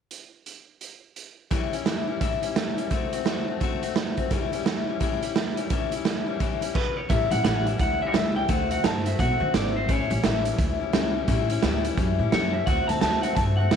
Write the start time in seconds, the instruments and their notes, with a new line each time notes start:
0.11 closed hi-hat
0.46 closed hi-hat
0.81 closed hi-hat
1.16 closed hi-hat
1.50 steel-string acoustic guitar A2 E3 G3 C#4 E4, kick, closed hi-hat
1.72 steel-string acoustic guitar G3 C#4 E4, closed hi-hat
1.85 steel-string acoustic guitar E3 G3 C#4 E4, snare, closed hi-hat
2.07 steel-string acoustic guitar G3 C#4 E4
2.21 steel-string acoustic guitar A2 E3 G3 C#4 E4, kick, closed hi-hat
2.42 steel-string acoustic guitar G3 C#4 E4, closed hi-hat
2.56 steel-string acoustic guitar E3 G3 C#4 E4, snare, closed hi-hat
2.77 steel-string acoustic guitar G3 C#4 E4, closed hi-hat
2.91 steel-string acoustic guitar D3 A3 C4 F#4, kick, closed hi-hat
3.13 steel-string acoustic guitar A3 C4 F#4, closed hi-hat
3.26 steel-string acoustic guitar D3 A3 C4 F#4, snare, closed hi-hat
3.48 steel-string acoustic guitar A3 C4 F#4
3.60 steel-string acoustic guitar D3 A3 C4 F#4, kick, closed hi-hat
3.82 steel-string acoustic guitar A3 C4 F#4, closed hi-hat
3.96 steel-string acoustic guitar D3 A3 C4 F#4, snare, closed hi-hat
4.17 steel-string acoustic guitar A3 C4 F#4, kick, closed hi-hat
4.30 steel-string acoustic guitar A2 E3 G3 C#4 E4, kick, closed hi-hat
4.52 steel-string acoustic guitar G3 C#4 E4, closed hi-hat
4.65 steel-string acoustic guitar E3 G3 C#4 E4, snare, closed hi-hat
4.87 steel-string acoustic guitar G3 C#4 E4
5.00 steel-string acoustic guitar A2 E3 G3 C#4 E4, kick, closed hi-hat
5.22 steel-string acoustic guitar G3 C#4 E4, closed hi-hat
5.35 steel-string acoustic guitar E3 G3 C#4 E4, snare, closed hi-hat
5.57 steel-string acoustic guitar G3 C#4 E4, closed hi-hat
5.70 steel-string acoustic guitar A2 E3 G3 C#4 E4, kick, closed hi-hat
5.92 steel-string acoustic guitar G3 C#4 E4, closed hi-hat
6.05 steel-string acoustic guitar E3 G3 C#4 E4, snare, closed hi-hat
6.26 steel-string acoustic guitar G3 C#4 E4
6.40 steel-string acoustic guitar A2 E3 G3 C#4 E4, kick, closed hi-hat
6.61 steel-string acoustic guitar G3 C#4 E4, closed hi-hat
6.75 clean electric guitar B4, kick, crash
6.97 clean electric guitar C#5
7.09 upright bass A1, steel-string acoustic guitar A2 E3 G3 C#4 E4, clean electric guitar E5, kick, closed hi-hat
7.31 upright bass A1, steel-string acoustic guitar G3 C#4 E4, clean electric guitar F#5, closed hi-hat
7.44 upright bass A1, steel-string acoustic guitar A2 E3 G3 C#4 E4, clean electric guitar F#5, snare, closed hi-hat
7.66 steel-string acoustic guitar G3 C#4 E4, clean electric guitar E5, closed hi-hat
7.78 upright bass D2, steel-string acoustic guitar E3 G3 C#4 E4, clean electric guitar F#5, kick, closed hi-hat
8.00 steel-string acoustic guitar G3 C#4 E4, clean electric guitar E5
8.07 clean electric guitar C#5
8.12 upright bass C#2, steel-string acoustic guitar A2 E3 G3 C#4 E4, clean electric guitar E5, snare, closed hi-hat
8.35 steel-string acoustic guitar G3 C#4 E4, clean electric guitar G5
8.48 upright bass D2, steel-string acoustic guitar D3 A3 C4 F#4, clean electric guitar F#5, kick, closed hi-hat
8.70 steel-string acoustic guitar A3 C4 F#4, clean electric guitar F#5, closed hi-hat
8.84 upright bass G2, steel-string acoustic guitar D3 A3 C4 F#4, clean electric guitar A5, snare, closed hi-hat
9.05 steel-string acoustic guitar A3 C4 F#4, clean electric guitar E5, closed hi-hat
9.18 upright bass B2, steel-string acoustic guitar D3 A3 C4 F#4, clean electric guitar F#5, kick, closed hi-hat
9.40 upright bass D3, steel-string acoustic guitar A3 C4 F#4
9.54 upright bass G#1, steel-string acoustic guitar D3 A3 C4 F#4, clean electric guitar D5, snare, closed hi-hat
9.75 steel-string acoustic guitar A3 C4 F#4, clean electric guitar C5
9.88 upright bass A1, steel-string acoustic guitar A2 E3 G3 C#4 E4, clean electric guitar C#5, kick, closed hi-hat
10.10 upright bass A1, steel-string acoustic guitar G3 C#4 E4, closed hi-hat
10.23 upright bass A1, steel-string acoustic guitar A2 E3 G3 C#4 E4, snare, closed hi-hat
10.45 steel-string acoustic guitar G3 C#4 E4, closed hi-hat
10.57 upright bass D2, steel-string acoustic guitar E3 G3 C#4 E4, kick, closed hi-hat
10.80 steel-string acoustic guitar G3 C#4 E4
10.93 upright bass C#2, steel-string acoustic guitar A2 E3 G3 C#4 E4, snare, closed hi-hat
11.14 steel-string acoustic guitar G3 C#4 E4
11.28 upright bass A1, steel-string acoustic guitar A2 E3 G3 C#4 E4, kick, closed hi-hat
11.50 steel-string acoustic guitar G3 C#4 E4, closed hi-hat
11.63 upright bass D2, steel-string acoustic guitar A2 E3 G3 C#4 E4, snare, closed hi-hat
11.84 steel-string acoustic guitar G3 C#4 E4, closed hi-hat
11.97 upright bass F#2, steel-string acoustic guitar E3 G3 C#4 E4, kick, closed hi-hat
12.19 upright bass A2, steel-string acoustic guitar G3 C#4 E4
12.32 upright bass F#2, steel-string acoustic guitar A2 E3 G3 C#4 E4, clean electric guitar C#5, snare, closed hi-hat
12.53 steel-string acoustic guitar G3 C#4 E4, clean electric guitar E5
12.66 upright bass D2, steel-string acoustic guitar D3 A3 C4 F#4, clean electric guitar F#5, kick, closed hi-hat
12.88 upright bass D2, steel-string acoustic guitar A3 C4 F#4, clean electric guitar A5, closed hi-hat
13.01 upright bass D2, steel-string acoustic guitar D3 A3 C4 F#4, clean electric guitar A5, snare, closed hi-hat
13.22 steel-string acoustic guitar C4 F#4, clean electric guitar F#5, closed hi-hat
13.27 steel-string acoustic guitar A3
13.35 upright bass G2, steel-string acoustic guitar D3 A3 C4, clean electric guitar A5, kick, closed hi-hat
13.40 steel-string acoustic guitar F#4
13.57 steel-string acoustic guitar C4 F#4, clean electric guitar F#5
13.62 steel-string acoustic guitar A3
13.71 upright bass F#2, steel-string acoustic guitar D3 A3 C4, snare, closed hi-hat